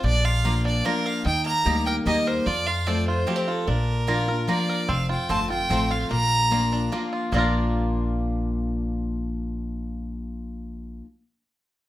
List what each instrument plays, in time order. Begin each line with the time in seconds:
0.04 upright bass A#1, steel-string acoustic guitar A#2, five-string banjo D4, fiddle D5
0.25 five-string banjo F4, fiddle F5
0.44 steel-string acoustic guitar F3 A#3 D4 F4, mandolin A#3 F4 D5 A#5, five-string banjo A#3
0.65 five-string banjo D4, fiddle D5
0.85 steel-string acoustic guitar F3 A#3 D4 F4, mandolin A#3 F4 D5 A#5, five-string banjo A#3, fiddle A#4
1.06 five-string banjo A#4, fiddle F5
1.25 upright bass D#2, steel-string acoustic guitar D#3, five-string banjo D#4, fiddle G5
1.46 five-string banjo A#3, fiddle A#5
1.65 upright bass D2, steel-string acoustic guitar G3 A#3 D#4 G4, mandolin A#3 G4 D#5 A#5, five-string banjo G4
1.86 five-string banjo A#4, fiddle G5
2.05 upright bass D#2, steel-string acoustic guitar G3 A#3 D#4 G4, mandolin A#3 G4 D#5 A#5, five-string banjo A#3, fiddle D#5
2.27 five-string banjo A#4, fiddle C5
2.46 upright bass F2, steel-string acoustic guitar F2, five-string banjo F4, fiddle D5
2.67 five-string banjo F4, fiddle F5
2.87 steel-string acoustic guitar F3 A3 C4 F4, mandolin C4 F4 C5 A5, five-string banjo C4, fiddle D5
3.08 five-string banjo F4, fiddle C5
3.27 steel-string acoustic guitar F3 A3 C4 F4, five-string banjo A#3, mandolin C4 F4 C5 A5, fiddle G4
3.36 five-string banjo C4
3.48 five-string banjo F4, fiddle A4
3.67 upright bass A#1, steel-string acoustic guitar A#2, five-string banjo D4, fiddle A#4
4.07 steel-string acoustic guitar F3 A#3 D4 F4, mandolin A#3 F4 D5 A#5, five-string banjo F4
4.28 steel-string acoustic guitar D4 F4, five-string banjo A#4
4.47 steel-string acoustic guitar F3 A#3 D4 F4, mandolin A#3 F4 D5 A#5, five-string banjo A#3, fiddle D5
4.69 five-string banjo A#4
4.89 upright bass F1, steel-string acoustic guitar F2, five-string banjo C4, fiddle F5
5.09 five-string banjo F4, fiddle G5
5.29 upright bass G1, steel-string acoustic guitar F3 A3 C4 F4, mandolin C4 F4 C5 A5, five-string banjo C4, fiddle A5
5.50 steel-string acoustic guitar C4 F4, five-string banjo F4, fiddle G5
5.69 upright bass A1, steel-string acoustic guitar F3 A3 C4 F4, mandolin C4 F4 C5 A5, five-string banjo C4
5.91 five-string banjo F4, fiddle F5
6.11 upright bass A#1, steel-string acoustic guitar A#2, five-string banjo A#3, fiddle A#5
6.50 steel-string acoustic guitar F3 A#3 D4 F4, mandolin A#3 F4 D5 A#5, five-string banjo A#3
6.73 five-string banjo D4
6.92 steel-string acoustic guitar F3 A#3 D4 F4, mandolin A#3 F4 D5 A#5, five-string banjo A#3
7.13 five-string banjo F4
7.32 upright bass A#1, steel-string acoustic guitar A#2 F3 A#3 D4 F4, mandolin A#3 F4 D5 A#5, five-string banjo A#3 D4
7.36 five-string banjo F4 A#4